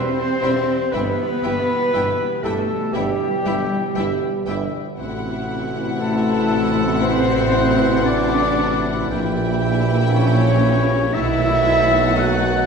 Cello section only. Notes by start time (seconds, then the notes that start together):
Already playing: C4
0.95 B3
2.46 A3
2.96 G3
6.01 A3
7.02 C4
8.06 D4
10.13 C#4
11.15 E4
12.18 F#4